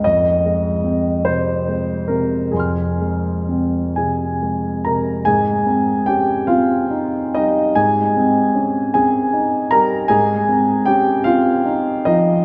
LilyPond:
<<
  \new Staff \with { instrumentName = "Grand piano" } { \time 6/8 \key aes \major \tempo 4. = 49 << { r2. | <aes'' c''' f'''>2. | r2. | r2. |
r2. | } \\ { ees''4. c''4 bes'8 | aes'4. <aes' aes''>4 <bes' bes''>8 | <aes' aes''>4 <g' g''>8 <f' f''>4 <ees' ees''>8 | <aes' aes''>4. <aes' aes''>4 <bes' bes''>8 |
<aes' aes''>4 <g' g''>8 <f' f''>4 <ees' ees''>8 | } >> }
  \new Staff \with { instrumentName = "Grand piano" } { \clef bass \time 6/8 \key aes \major f,8 aes8 c'8 c8 aes8 c8 | f,8 aes8 c'8 c8 aes8 c8 | aes,8 c'8 des'8 c'8 ees'8 g8 | aes,8 c'8 des'8 c'8 ees'8 g8 |
aes,8 c'8 des'8 c'8 ees'8 f8 | }
>>